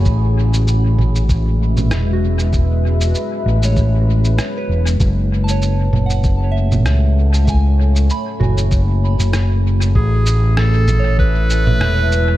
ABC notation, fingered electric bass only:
X:1
M:4/4
L:1/16
Q:"Swing 16ths" 1/4=97
K:A
V:1 name="Fingered electric bass" clef=bass
A,,,6 A,,,6 E,,,4- | E,,,4 z2 A,,,6 z2 E,,,2 | F,,,6 F,,,6 C,,4- | C,,4 z2 F,,,4- F,,, F,,,4- F,,, |
A,,,6 A,,,6 E,,,4 |]